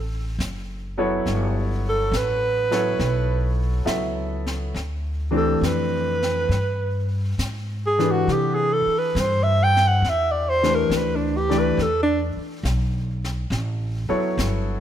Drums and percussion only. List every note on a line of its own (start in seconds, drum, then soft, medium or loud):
0.40 snare medium
0.40 hi-hat pedal medium
1.26 brush sweep soft
1.26 snare soft
2.13 snare medium
2.13 hi-hat pedal soft
2.72 snare soft
3.00 brush sweep soft
3.00 snare soft
3.87 snare medium
3.87 hi-hat pedal medium
4.47 snare soft
4.76 brush sweep soft
4.76 snare soft
5.63 snare medium
5.63 hi-hat pedal medium
6.23 snare soft
6.51 brush sweep soft
6.51 snare soft
7.39 snare medium
7.39 hi-hat pedal medium
8.00 snare soft
8.29 brush sweep soft
8.29 snare soft
9.16 snare medium
9.16 hi-hat pedal medium
9.77 snare soft
10.05 brush sweep soft
10.05 snare soft
10.63 snare soft
10.91 snare medium
10.91 hi-hat pedal medium
11.51 snare soft
11.79 brush sweep soft
11.79 snare soft
12.65 snare medium
12.65 hi-hat pedal medium
13.24 snare soft
13.52 brush sweep soft
13.52 snare soft
14.39 snare medium
14.39 hi-hat pedal medium